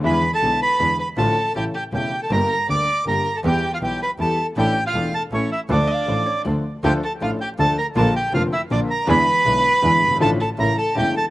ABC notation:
X:1
M:3/4
L:1/16
Q:1/4=160
K:Dm
V:1 name="Bandoneon"
=b3 a3 b4 b2 | a4 g2 g2 g3 a | b4 d'4 b3 a | g3 f g2 =b2 a3 z |
g3 f3 a2 ^c2 e2 | d8 z4 | g2 a2 f2 g2 a2 b2 | a2 g2 f2 e2 d2 b2 |
=b12 | a2 a2 b2 a2 g2 a2 |]
V:2 name="Hollow-body jazz guitar"
z12 | z12 | z12 | z12 |
z12 | z2 f4 ^c2 d4 | z12 | z12 |
z12 | z12 |]
V:3 name="Violin"
=B3 A3 B4 B2 | A4 G2 G2 G3 A | B4 d4 B3 A | G3 F G2 =B2 A3 z |
G3 F3 A2 ^C2 E2 | D8 z4 | G2 A2 F2 G2 A2 B2 | A2 G2 F2 E2 D2 B2 |
=B12 | A2 A2 B2 A2 G2 A2 |]
V:4 name="String section"
[DE^G]2 z2 [DEG]2 z2 [DEG]2 z2 | [DFA]2 z2 [^CEA]2 z2 [CEA]2 z2 | [B,DG]2 z2 [B,DG]2 z2 [B,DG]2 z2 | [=B,EG]2 z2 [B,EG]2 z2 [B,EG]2 z2 |
[DEA]2 z2 [DEA]2 z2 [^CEA]2 z2 | [DFA]2 z2 [DFA]2 z2 [DFA]2 z2 | [DFA]2 z2 [DFA]2 z2 [DFA]2 z2 | [DFB]2 z2 [DFB]2 z2 [DFB]2 z2 |
[DE^G]2 z2 [DEG]2 z2 [DEG]2 z2 | [DFA]2 z2 [^CEA]2 z2 [CEA]2 z2 |]
V:5 name="Grand piano" clef=bass
[E,,D,E,^G,=B,E]2 z2 [=B,,,=B,,D,G,B,E]2 z2 [E,,D,E,G,B,E]2 z2 | [A,,,A,,D,F,A,F]2 z2 [A,,,A,,^C,E,A,E]2 z2 [E,,,E,,C,E,A,E]2 z2 | [G,,,G,,D,G,B,G]2 z2 [D,,D,G,B,G]2 z2 [G,,,G,,D,G,B,G]2 z2 | [E,,E,G,=B,G]2 z2 [=B,,,=B,,E,G,B,G]2 z2 [E,,E,G,B,G]2 z2 |
[A,,,A,,E,A,DA]2 z2 [E,,,E,,E,A,DA]2 z2 [A,,,A,,E,A,^CA]2 z2 | [D,,D,F,A,DA]2 z2 [A,,,A,,F,A,DA]2 z2 [D,,D,F,A,DA]2 z2 | [D,,D,F,A,DA]2 z2 [A,,,A,,F,A,DA]2 z2 [D,,D,F,A,DA]2 z2 | [B,,,B,,D,F,B,F]2 z2 [F,,,F,,D,F,B,F]2 z2 [B,,,B,,D,F,B,F]2 z2 |
[E,,D,E,^G,=B,E]2 z2 [=B,,,=B,,D,G,B,E]2 z2 [E,,D,E,G,B,E]2 z/2 ^F,,,/2 =G,,,/2 ^G,,,/2 | [A,,,A,,D,F,A,F]2 z2 [A,,,A,,^C,E,A,E]2 z2 [E,,,E,,C,E,A,E]2 z2 |]
V:6 name="Double bass" clef=bass
E,,2 z2 =B,,,2 z2 E,,2 z2 | A,,,2 z2 A,,,2 z2 E,,,2 z2 | G,,,2 z2 D,,2 z2 G,,,2 z2 | E,,2 z2 =B,,,2 z2 E,,2 z2 |
A,,,2 z2 E,,,2 z2 A,,,2 z2 | D,,2 z2 A,,,2 z2 D,,2 z2 | D,,2 z2 A,,,2 z2 D,,2 z2 | B,,,2 z2 F,,,2 z2 B,,,2 z2 |
E,,2 z2 =B,,,2 z2 E,,2 G,,,2 | A,,,2 z2 A,,,2 z2 E,,,2 z2 |]